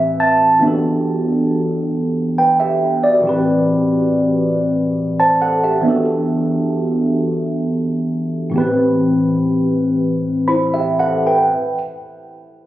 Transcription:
0.00 0.57 A2 medium
0.00 0.58 E3 medium
0.00 0.59 C4 medium
0.00 0.60 G4 medium
0.00 0.61 B4 medium
0.00 0.16 E5 medium
0.20 0.60 A5 medium
0.59 3.18 E3 medium
0.59 3.18 B3 medium
0.59 3.19 D4 medium
0.64 2.34 F#4 medium
0.64 2.34 G4 medium
0.64 2.35 A4 medium
2.38 2.58 B4 soft
2.38 2.58 G5 soft
2.60 3.01 G4 soft
2.60 3.00 E5 medium
3.04 3.44 F#4 soft
3.04 3.44 D5 medium
3.21 5.79 A2 medium
3.21 5.80 E3 medium
3.25 5.81 C4 medium
3.25 4.96 G4 medium
3.29 4.97 B4 medium
5.20 5.40 C5 soft
5.20 5.40 A5 soft
5.42 5.62 A4 medium
5.42 5.62 F#5 medium
5.64 5.87 G4 soft
5.64 6.04 E5 medium
5.81 8.47 E3 medium
5.81 8.48 B3 medium
5.81 8.49 D4 medium
5.86 8.49 F#4 medium
5.86 8.50 G4 medium
5.86 8.51 A4 medium
8.50 11.47 A2 medium
8.50 11.48 E3 medium
8.50 8.60 B3 soft
8.56 10.45 G4 medium
8.56 10.46 B4 medium
8.60 11.53 C4 medium
10.48 10.72 E4 soft
10.48 10.72 C5 soft
10.48 10.96 B5 soft
10.74 10.98 G4 soft
10.74 10.98 E5 soft
10.99 11.25 A4 soft
10.99 11.24 F#5 medium
11.27 11.78 B4 soft
11.27 11.78 G5 soft

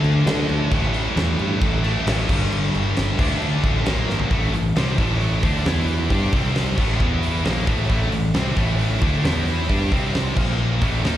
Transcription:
0.00 0.21 D2 loud
0.00 0.71 D3 medium
0.00 0.71 A3 loud
0.00 0.72 D4 loud
0.04 crash medium
0.26 0.44 D3 loud
0.26 snare loud
0.26 crash medium
0.49 0.66 D2 loud
0.49 crash medium
0.71 1.06 A1 medium
0.71 1.83 A2 medium
0.71 1.84 E3 loud
0.71 1.83 A3 loud
0.71 kick loud
0.71 crash medium
0.94 crash medium
1.16 1.33 E2 loud
1.16 snare loud
1.16 crash medium
1.39 1.57 G2 loud
1.39 crash medium
1.61 1.96 A1 medium
1.61 kick loud
1.61 crash medium
1.84 2.05 A2 medium
1.84 2.06 E3 medium
1.84 2.05 A3 medium
1.84 crash medium
2.06 2.24 A1 loud
2.06 2.27 A2 medium
2.06 2.28 E3 medium
2.06 2.29 A3 loud
2.06 snare loud
2.06 crash loud
2.29 2.46 G1 medium
2.29 3.17 G2 medium
2.29 3.17 D3 medium
2.29 3.19 G3 medium
2.29 kick loud
2.29 crash loud
2.51 2.68 G1 medium
2.51 crash medium
2.74 2.91 G1 medium
2.74 crash medium
2.97 3.14 G1 medium
2.97 snare loud
2.97 crash medium
3.18 3.36 D2 loud
3.18 3.85 D3 medium
3.18 3.86 A3 loud
3.18 3.86 D4 loud
3.18 kick loud
3.18 crash loud
3.41 3.58 D2 medium
3.41 crash medium
3.63 3.81 A1 medium
3.63 kick medium
3.63 crash medium
3.86 4.04 A#1 loud
3.86 4.30 A#2 loud
3.86 4.30 F3 loud
3.86 4.31 A#3 loud
3.86 snare loud
3.86 crash medium
4.08 4.26 G#1 medium
4.08 snare medium
4.19 floor tom medium
4.31 4.52 A1 medium
4.31 4.53 A2 medium
4.31 4.53 E3 medium
4.31 4.53 A3 loud
4.31 kick loud
4.31 open hi-hat medium
4.53 4.74 A1 medium
4.53 4.72 A2 medium
4.53 4.72 E3 medium
4.53 open hi-hat medium
4.76 4.97 C2 loud
4.76 4.98 C3 medium
4.76 4.98 G3 loud
4.76 4.98 C4 loud
4.76 snare loud
4.76 open hi-hat medium
4.98 5.40 A1 loud
4.98 5.43 A2 medium
4.98 5.43 E3 loud
4.98 5.43 A3 loud
4.98 kick loud
4.98 open hi-hat medium
5.21 open hi-hat medium
5.43 5.64 D2 loud
5.43 5.65 D3 medium
5.43 5.66 A3 medium
5.43 5.66 D4 loud
5.43 kick loud
5.43 open hi-hat medium
5.65 6.07 E2 loud
5.65 6.10 E3 loud
5.65 6.10 B3 loud
5.65 6.11 E4 loud
5.65 snare loud
5.65 open hi-hat loud
5.78 snare soft
5.88 open hi-hat medium
6.10 6.31 G2 medium
6.10 6.33 G3 medium
6.10 6.33 D4 medium
6.10 6.33 G4 loud
6.10 kick loud
6.10 open hi-hat medium
6.33 6.75 C2 medium
6.33 6.77 C3 medium
6.33 6.78 G3 loud
6.33 6.78 C4 loud
6.33 kick loud
6.33 open hi-hat medium
6.55 snare medium
6.55 open hi-hat medium
6.77 6.99 A1 loud
6.77 7.00 A2 medium
6.77 7.00 E3 loud
6.77 7.01 A3 loud
6.77 kick loud
6.77 crash loud
7.00 7.42 E2 medium
7.00 7.44 E3 medium
7.00 7.45 B3 medium
7.00 7.45 E4 loud
7.00 kick loud
7.23 open hi-hat medium
7.44 7.66 A#1 loud
7.44 7.66 A#2 medium
7.44 7.67 F3 loud
7.44 7.67 A#3 loud
7.44 snare loud
7.44 open hi-hat medium
7.67 7.89 A1 medium
7.67 7.88 A2 medium
7.67 7.89 E3 medium
7.67 7.90 A3 medium
7.67 kick loud
7.67 open hi-hat medium
7.89 8.11 A1 medium
7.89 8.11 A2 medium
7.89 8.12 E3 medium
7.89 8.13 A3 loud
7.89 kick loud
7.89 open hi-hat medium
8.12 8.33 A1 medium
8.12 8.31 A2 medium
8.12 8.31 E3 medium
8.12 open hi-hat medium
8.34 8.56 C2 loud
8.34 8.56 C3 medium
8.34 8.57 G3 loud
8.34 8.57 C4 loud
8.34 snare loud
8.34 open hi-hat medium
8.56 8.99 A1 loud
8.56 9.01 A2 loud
8.56 9.01 E3 loud
8.56 9.01 A3 loud
8.56 kick loud
8.56 open hi-hat medium
8.79 open hi-hat medium
9.01 9.23 D2 loud
9.01 9.24 D3 medium
9.01 9.24 A3 loud
9.01 9.24 D4 loud
9.01 kick loud
9.01 open hi-hat medium
9.24 9.66 E2 loud
9.24 9.69 E3 loud
9.24 9.69 B3 loud
9.24 9.69 E4 loud
9.24 snare loud
9.24 open hi-hat loud
9.37 snare soft
9.48 open hi-hat medium
9.69 9.91 G2 medium
9.69 9.91 G3 medium
9.69 9.92 D4 medium
9.69 9.92 G4 loud
9.69 kick loud
9.69 open hi-hat medium
9.92 10.34 C2 medium
9.92 10.37 C3 medium
9.92 10.37 G3 loud
9.92 10.38 C4 loud
9.92 kick loud
9.92 open hi-hat medium
10.14 snare loud
10.14 open hi-hat medium
10.36 10.79 A#1 loud
10.36 10.81 A#2 loud
10.36 10.81 F3 loud
10.36 10.82 A#3 loud
10.36 kick loud
10.36 crash loud
10.82 11.03 A1 loud
10.82 11.04 A2 medium
10.82 11.04 E3 medium
10.82 11.04 A3 medium
10.82 kick loud
10.82 open hi-hat medium
11.03 11.17 D#2 loud
11.03 11.17 D#3 medium
11.03 11.17 A#3 loud
11.03 11.17 D#4 loud
11.03 snare loud
11.03 open hi-hat medium

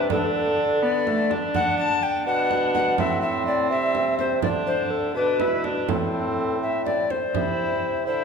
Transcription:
0.00 0.12 C3 medium
0.10 1.99 D3 medium
0.10 0.84 D4 medium
0.10 0.34 A4 medium
0.10 frame drum medium
0.34 0.81 A4 loud
0.83 1.09 B3 medium
0.83 1.33 D5 loud
1.07 1.32 A3 medium
1.07 frame drum soft
1.30 2.26 D4 medium
1.30 frame drum medium
1.54 1.78 F#5 loud
1.54 frame drum medium
1.78 2.04 A5 loud
2.03 2.26 G5 medium
2.26 2.94 B2 medium
2.26 3.01 D4 medium
2.26 2.73 F#5 loud
2.51 frame drum soft
2.74 2.98 F#5 loud
2.74 frame drum medium
2.98 3.73 A2 medium
2.98 4.42 C4 medium
2.98 3.21 E5 loud
2.98 frame drum medium
3.22 3.46 E5 medium
3.47 3.70 D5 medium
3.71 4.45 C3 medium
3.71 4.18 E5 loud
3.95 frame drum soft
4.19 4.42 C5 medium
4.19 frame drum soft
4.42 5.17 D3 medium
4.42 5.14 D4 medium
4.42 4.49 D5 medium
4.42 frame drum medium
4.67 4.92 C5 medium
4.91 5.15 A4 medium
5.15 5.88 B2 medium
5.15 5.42 D4 medium
5.15 5.62 B4 medium
5.40 5.66 E4 medium
5.40 frame drum medium
5.64 5.90 D4 medium
5.64 frame drum soft
5.88 7.08 A2 medium
5.88 7.15 C4 medium
5.88 6.58 A4 medium
5.88 frame drum medium
6.62 6.85 E5 medium
6.86 7.12 D5 medium
6.86 frame drum soft
7.10 8.06 C5 medium
7.10 frame drum soft
7.34 8.08 C3 medium
7.34 8.03 E4 medium
7.34 frame drum medium
8.06 8.24 D3 medium
8.06 8.24 E4 medium
8.06 8.24 C5 medium

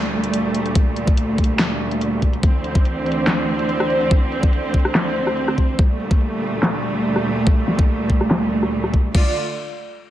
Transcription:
0.00 5.75 D2 medium
0.00 2.40 A#2 medium
0.00 2.40 G3 medium
0.00 2.39 A3 medium
0.24 closed hi-hat medium
0.34 closed hi-hat medium
0.55 closed hi-hat medium
0.66 closed hi-hat soft
0.75 kick loud
0.75 closed hi-hat medium
0.96 closed hi-hat soft
1.07 kick loud
1.07 closed hi-hat soft
1.17 closed hi-hat medium
1.38 kick medium
1.38 closed hi-hat soft
1.44 closed hi-hat medium
1.59 snare loud
1.59 clap medium
1.59 closed hi-hat medium
1.91 closed hi-hat soft
2.01 closed hi-hat medium
2.22 kick medium
2.22 closed hi-hat soft
2.33 closed hi-hat soft
2.43 5.76 D3 medium
2.43 5.76 E3 medium
2.43 5.76 C4 medium
2.43 kick loud
2.43 closed hi-hat medium
2.64 closed hi-hat soft
2.75 kick loud
2.75 closed hi-hat soft
2.85 closed hi-hat medium
3.06 closed hi-hat soft
3.12 closed hi-hat medium
3.27 snare loud
3.27 clap medium
3.27 closed hi-hat medium
3.59 closed hi-hat soft
3.69 closed hi-hat medium
3.80 cross-stick medium
3.90 closed hi-hat soft
4.01 closed hi-hat soft
4.11 kick loud
4.11 closed hi-hat medium
4.32 closed hi-hat soft
4.43 kick loud
4.43 closed hi-hat soft
4.53 closed hi-hat medium
4.74 kick medium
4.74 closed hi-hat soft
4.79 closed hi-hat medium
4.85 cross-stick medium
4.95 snare loud
4.95 clap medium
4.95 closed hi-hat medium
5.27 cross-stick medium
5.27 closed hi-hat medium
5.37 closed hi-hat medium
5.48 cross-stick medium
5.58 kick medium
5.58 closed hi-hat medium
5.69 closed hi-hat soft
5.79 9.11 D2 medium
5.79 9.11 A#2 medium
5.79 9.11 G3 medium
5.79 9.11 A3 medium
5.79 kick loud
5.79 closed hi-hat medium
6.00 closed hi-hat medium
6.11 kick loud
6.11 closed hi-hat soft
6.21 closed hi-hat medium
6.42 closed hi-hat soft
6.47 closed hi-hat medium
6.63 snare loud
6.63 clap medium
6.63 closed hi-hat medium
6.95 closed hi-hat medium
7.05 closed hi-hat medium
7.16 cross-stick medium
7.26 closed hi-hat medium
7.37 closed hi-hat soft
7.47 kick loud
7.47 closed hi-hat medium
7.68 snare medium
7.68 closed hi-hat medium
7.79 kick loud
7.89 closed hi-hat medium
8.10 kick medium
8.10 closed hi-hat soft
8.15 closed hi-hat medium
8.21 cross-stick medium
8.31 snare loud
8.31 clap medium
8.31 closed hi-hat medium
8.63 cross-stick medium
8.63 closed hi-hat medium
8.73 closed hi-hat medium
8.84 cross-stick medium
8.94 kick medium
9.05 closed hi-hat soft
9.15 9.34 D3 medium
9.15 9.34 A3 medium
9.15 9.34 F4 medium
9.15 9.34 D5 medium
9.15 kick loud
9.15 crash medium

